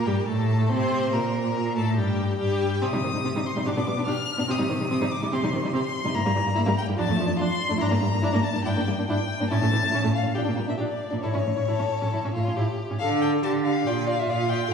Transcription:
0.05 cello G2, viola G3, violin G4 G5
0.26 cello A2, viola A3, violin A4 A5
0.68 cello C3, viola C4, violin C5 C6
1.12 cello A#2, viola A#3, violin A#4 A#5
1.76 cello A2, viola A3, violin A4 A5
1.96 cello G2, viola G3, violin G4 G5
2.38 cello G2, viola G3, violin G4 G5
2.81 cello C3, viola C4, violin G4 D#6
2.93 cello C3, viola G3, violin D#4
3.04 cello C3, viola D#3, violin C4
3.14 cello C3, viola G3, violin D#4
3.24 cello C3, viola C4, violin G4
3.35 cello C3, viola G3, violin D#4
3.46 violin C6
3.56 cello C3, viola G3, violin D#4
3.65 cello B2, viola D4, violin G4 D6
3.77 cello B2, viola B3, violin D4
3.87 cello B2, viola G3, violin B3
3.97 cello B2, viola B3, violin D4
4.06 cello B2, viola D4, violin G4 F6
4.38 cello B2, viola B3, violin D4
4.48 cello C3, viola C4, violin G4 D#6
4.58 cello C3, viola G3, violin D#4
4.69 cello C3, viola D#3, violin C4
4.80 cello C3, viola G3, violin D#4
4.90 cello C3, viola C4, violin G4
5.01 cello C3, viola G3, violin D#4
5.12 violin D6
5.22 cello C3, viola G3, violin D#4
5.32 cello C3, viola C4, violin G4 C6
5.43 cello C3, viola G3, violin D#4
5.53 cello C3, viola D#3, violin C4
5.63 cello C3, viola G3, violin D#4
5.73 cello C3, viola C4, violin G4 C6
6.04 cello C3, viola G3, violin D#4
6.15 cello G2, viola A#3, violin E4 A#5
6.25 cello G2, viola G3, violin A#3
6.35 cello G2, viola E3, violin G3
6.45 cello G2, viola G3, violin A#3
6.55 cello G2, viola A#3, violin E4
6.66 cello G2, viola G3, violin A#3
6.78 violin G5
6.87 cello G2, viola G3, violin A#3
6.96 cello F2, viola D4, violin F4 A5
7.06 cello F2, violin D4
7.10 viola A3
7.16 cello F2, violin A3
7.20 viola F3
7.26 cello F2, viola A3, violin D4
7.36 cello F2, violin F4 C6
7.41 viola D4
7.68 cello F2, viola A3, violin D4
7.77 violin E4 A#5
7.81 cello G2, viola D4
7.89 cello G2, viola A#3, violin D4
8.01 cello G2, viola G3, violin A#3
8.12 cello G2, viola A#3, violin D4
8.22 cello G2, viola D4, violin E4
8.33 cello G2, viola A#3, violin D4
8.43 violin A5
8.53 cello G2, viola A#3, violin D4
8.64 cello G2, viola D4, violin E4 G5
8.77 cello G2, viola A#3, violin D4
8.87 cello G2, viola G3, violin A#3
8.98 cello G2, viola A#3, violin D4
9.06 cello G2, viola D4, violin E4 G5
9.40 cello G2, viola A#3, violin D4
9.50 cello A2, viola C#4, violin E4 A5
9.61 cello A2, viola A3, violin C#4
9.71 cello A2, viola E3, violin A3
9.82 cello A2, viola A3, violin C#4
9.91 cello A2, viola C#4, violin E4
10.02 cello A2, viola A3, violin C#4
10.15 violin F5
10.23 cello A2, viola A3, violin C#4
10.34 cello A#2, viola D4, violin G4 G5
10.44 cello A#2, viola A#3, violin D4
10.56 cello A#2, viola G3, violin A#3
10.67 cello A#2, viola A#3, violin D4 E5
10.77 cello A#2, viola D4, violin G4 D5
11.10 cello A#2, viola A#3, violin D4
11.22 cello A2, viola E4, violin A4 C#5
11.33 cello A2, viola C#4, violin E4
11.45 cello A2, viola A3, violin C#4
11.56 cello A2, viola C#4, violin E4
11.67 cello A2, viola E4, violin A4
11.79 cello A2, viola C#4
12.01 cello A2, viola C#4
12.13 cello A2, viola E4
12.25 cello A2, viola C#4
12.34 cello A2, viola A3, violin F4
12.46 cello A2, viola C#4
12.56 cello A2, viola E4, violin G4
12.90 cello A2, viola C#4
12.99 cello D3, violin A4 F5, viola A4
13.21 violin A4 G5
13.43 cello D3, viola G4, violin A4 A5
13.64 violin A4 F5
13.86 cello A#2, viola F4, violin D5 G5
14.07 violin D5 F5
14.19 violin E5
14.29 cello A#2, violin D5 F5
14.49 violin D5 G5
14.70 viola A4

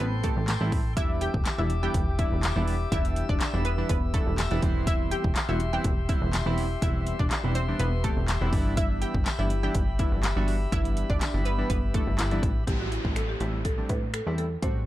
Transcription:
Already playing: pipe organ A4 G5 C6
0.00 analog synth bass A1, synth pluck B3 B4
0.23 synth keys E3 G3 A3 C4 G4, synth pluck A3 A4, kick, closed hi-hat
0.36 analog synth bass A1
0.48 snare, clap, closed hi-hat, tambourine
0.61 analog synth bass A1, synth keys E3 G3 A3 C4 E4
0.72 kick, open hi-hat
0.96 analog synth bass E1, synth keys E3 G3 B3 D4 E4, synth pluck E4 E5, pipe organ G4 E5 D6, kick, closed hi-hat
1.21 synth pluck G4 G5, closed hi-hat
1.34 analog synth bass E1, kick
1.45 snare, clap, closed hi-hat, tambourine
1.58 analog synth bass E1, synth keys E3 G3 B3 D4 E4, synth pluck E4 E5
1.70 closed hi-hat
1.83 synth keys E3 G3 B3 D4 E4, synth pluck G4 G5
1.94 analog synth bass E1, kick, closed hi-hat
2.18 synth keys E3 G3 B3 D4 E4, synth pluck E4 E5, kick, closed hi-hat
2.32 analog synth bass E1
2.43 snare, clap, closed hi-hat, tambourine
2.56 analog synth bass E1, synth keys E3 G3 B3 D4 E4
2.68 open hi-hat
2.92 analog synth bass E1, synth keys E3 G3 B3 D4 G4, synth pluck E4 E5, pipe organ E6, kick, closed hi-hat
3.05 closed hi-hat
3.16 closed hi-hat
3.29 analog synth bass E1, synth pluck D4 D5, kick
3.41 snare, clap, closed hi-hat, tambourine
3.53 analog synth bass E1, synth keys E3 G3 B3 D4 E4
3.65 synth pluck B3 B4, closed hi-hat
3.78 synth keys E3 G3 B3 D4 E4
3.89 analog synth bass E1, synth pluck B3 B4, kick, closed hi-hat
4.14 synth keys E3 G3 B3 D4 E4, synth pluck A3 A4, kick, closed hi-hat
4.27 analog synth bass E1
4.38 snare, clap, closed hi-hat, tambourine
4.51 analog synth bass E1, synth keys E3 G3 B3 D4 E4, closed hi-hat
4.62 analog synth bass E1, synth keys E3 G3 B3 C4 E4, pipe organ G4 C6, kick, closed hi-hat
4.87 synth pluck E4 E5, kick, closed hi-hat
5.11 synth pluck G4 G5, closed hi-hat
5.24 analog synth bass E1, kick
5.36 snare, clap, closed hi-hat, tambourine
5.48 analog synth bass E1, synth keys E3 G3 B3 C4 F#4, synth pluck E4 E5
5.60 closed hi-hat
5.73 synth keys E3 G3 B3 C4 E4, synth pluck G4 G5
5.84 analog synth bass E1, kick, closed hi-hat
6.09 synth keys E3 G3 B3 C4 E4, synth pluck E4 E5, kick, closed hi-hat
6.22 analog synth bass E1
6.33 snare, clap, closed hi-hat, tambourine
6.46 analog synth bass E1, synth keys E3 G3 B3 C4 E4
6.58 open hi-hat
6.82 analog synth bass E1, synth keys E3 G3 B3 C4 E4, synth pluck E4 E5, kick, closed hi-hat
7.07 closed hi-hat
7.19 analog synth bass E1, synth pluck D4 D5, kick
7.31 snare, clap, closed hi-hat, tambourine
7.44 analog synth bass E1, synth keys E3 G3 B3 C4 E4
7.55 synth pluck C4 C5, closed hi-hat
7.68 synth keys E3 G3 B3 C4 D4
7.79 analog synth bass E1, synth pluck B3 B4, closed hi-hat
8.04 synth keys E3 G3 B3 C4 G4, synth pluck A3 A4, kick, closed hi-hat
8.17 analog synth bass E1
8.28 snare, clap, closed hi-hat, tambourine
8.41 analog synth bass E1, synth keys E3 G3 B3 C4 E4
8.53 analog synth bass G1, synth keys E3 G3 B3 D4 E4, pipe organ G4 B5, kick, open hi-hat
8.77 synth pluck E4 E5, kick, closed hi-hat
9.02 synth pluck G4 G5, closed hi-hat
9.14 analog synth bass G1, kick
9.26 snare, clap, closed hi-hat, tambourine
9.39 analog synth bass G1, synth keys E3 G3 B3 D4 E4, synth pluck E4 E5
9.50 closed hi-hat
9.63 synth keys E3 G3 B3 D4 E4, synth pluck G4 G5
9.75 analog synth bass G1, kick, closed hi-hat
9.99 synth keys E3 G3 B3 D4 E4, synth pluck E4 E5, kick, closed hi-hat
10.12 analog synth bass G1
10.23 snare, clap, closed hi-hat, tambourine
10.36 analog synth bass G1, synth keys E3 G3 B3 D4 F#4
10.48 open hi-hat
10.72 analog synth bass G1, synth keys E3 G3 B3 D4 E4, synth pluck E4 E5, kick, closed hi-hat
10.85 closed hi-hat
10.97 closed hi-hat
11.10 analog synth bass G1, synth pluck D4 D5, kick
11.21 snare, clap, closed hi-hat, tambourine
11.34 analog synth bass G1, synth keys E3 G3 B3 D4 E4
11.45 synth pluck B3 B4, closed hi-hat
11.58 synth keys E3 G3 B3 D4 E4
11.70 analog synth bass G1, synth pluck B3 B4, kick, closed hi-hat
11.94 synth keys E3 G3 B3 D4 E4, synth pluck A3 A4, kick, closed hi-hat
12.07 analog synth bass G1
12.19 analog synth bass G1, marimba E4, snare, clap, closed hi-hat, tambourine
12.31 synth keys E3 G3 B3 D4 E4, closed hi-hat
12.43 analog synth bass A1, kick, closed hi-hat
12.67 analog synth bass A1, synth keys G3 A3 C4 E4, marimba G4, kick, closed hi-hat, downlifter
12.80 marimba F#4
12.92 marimba E4, closed hi-hat
13.04 analog synth bass A1, synth keys G3 A3 C4 E4, kick
13.16 marimba A4, finger snap, closed hi-hat
13.29 marimba G4
13.40 analog synth bass A1, synth keys G3 A3 C4 E4, marimba G4, closed hi-hat
13.65 marimba A4, kick, closed hi-hat
13.78 synth keys G3 A3 C4 D4
13.89 analog synth bass A2, marimba B4, kick, closed hi-hat
14.14 marimba A4, finger snap, closed hi-hat
14.26 analog synth bass E2, synth keys G3 A3 C4 E4
14.38 marimba A4, closed hi-hat
14.62 analog synth bass A1, synth keys G3 A3 C4 F#4, marimba C5, kick, closed hi-hat

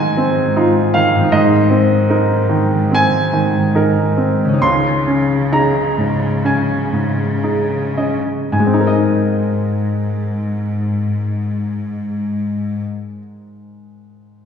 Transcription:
Already playing: harp G#2 C4 D#4 F4, cello section G#2, grand piano G#2 D#3 C4 D#4 F4 G#5 A#5 C6
0.17 grand piano C4
0.56 grand piano D#4 F4
0.94 grand piano D#3 F5
1.15 harp G#2
1.19 harp C4
1.24 harp D#4
1.29 grand piano G#2 D#5, harp A#4
1.33 cello section G#2
1.70 grand piano C4
2.10 grand piano D#4 A#4
2.49 grand piano D#3
2.91 grand piano C4 G#5
3.33 grand piano D#3
3.75 grand piano D#4 A#4
4.17 grand piano C4
4.45 harp C#3
4.49 harp C#4
4.53 harp D#4
4.58 grand piano C#2 C6, harp G#4
4.64 cello section C#3
5.07 grand piano C#4
5.52 grand piano D#4 G#4 A#5
5.98 grand piano G#2
6.44 grand piano C#4 G#5
6.93 grand piano G#2
7.43 grand piano D#4 G#4
7.97 grand piano C#4 D#5
8.52 grand piano G#2 G#5, harp G#2, cello section G#2
8.59 grand piano G#3, harp G#3
8.66 grand piano C4, harp C4
8.73 grand piano D#4, harp D#4
8.80 grand piano A#4, harp A#4
8.87 grand piano D#5, harp D#5

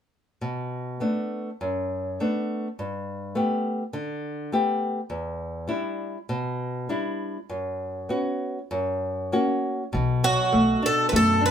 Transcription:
0.41 nylon-string guitar B2
1.00 nylon-string guitar A3 B3 D4
1.61 nylon-string guitar F#2
2.20 nylon-string guitar A3 B3 D4
2.79 nylon-string guitar G2
3.35 nylon-string guitar A3 B3 G4
3.93 nylon-string guitar D3
4.52 nylon-string guitar A3 B3 G4
5.10 nylon-string guitar E2
5.68 nylon-string guitar G3 D4 E4
6.29 nylon-string guitar B2
6.89 nylon-string guitar G3 D4 E4
7.50 nylon-string guitar F#2
8.09 nylon-string guitar B3 C#4 F#4
8.71 nylon-string guitar F#2
9.32 nylon-string guitar A#3 C#4 F#4
9.93 upright bass B1, nylon-string guitar B2
10.24 nylon-string guitar F#3, twelve-string acoustic guitar F#4
10.52 upright bass B1, nylon-string guitar A3
10.82 nylon-string guitar D4, twelve-string acoustic guitar A4
11.09 upright bass F#2, nylon-string guitar A3, twelve-string acoustic guitar B4
11.16 twelve-string acoustic guitar A4
11.41 nylon-string guitar D4
11.46 twelve-string acoustic guitar B4

